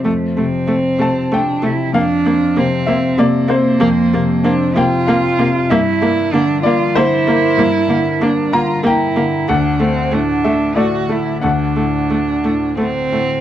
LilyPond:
<<
  \new Staff \with { instrumentName = "Cello" } { \time 3/4 \key g \dorian \tempo 4 = 95 a8 c'4. d'8 e'8 | d'4 c'4 bes4~ | bes4 d'8 f'4. | e'4 d'8 f'8 e'4~ |
e'4 d'8 f'8 e'4 | d'8 c'8 d'4 fis'8 e'8 | d'2 c'4 | }
  \new Staff \with { instrumentName = "Grand piano" } { \time 3/4 \key g \dorian c''4 r8 a''8 g''4 | f''4. e''8 d''8 c''8~ | c''4 r8 g''8 f''4 | e''4. d''8 c''8 bes'8~ |
bes'4 r8 bes''8 g''4 | fis''4. e''8 d''4 | fis''2 r4 | }
  \new Staff \with { instrumentName = "Grand piano" } { \clef bass \time 3/4 \key g \dorian <f, c'>8 c8 c'8 c8 c'8 c8 | f,8 c'8 c8 c'8 c8 c'8 | f,8 c8 c'8 c8 c'8 c8 | g,8 bes8 d8 bes8 d8 bes8 |
g,8 d8 bes8 d8 bes8 d8 | d,8 a8 a,8 a8 a,8 a8 | d,8 a,8 a8 a,8 a8 a,8 | }
  \new Staff \with { instrumentName = "Viola" } { \time 3/4 \key g \dorian a8 a8 a8 a8 a8 a8 | bes8 bes8 bes8 bes8 bes8 bes8 | bes8 bes8 bes8 bes8 bes8 bes8 | bes8 bes8 bes8 bes8 bes8 bes8 |
bes8 bes8 bes8 bes8 bes8 bes8 | a8 a8 a8 a8 a8 a8 | a8 a8 a8 a8 a8 a8 | }
>>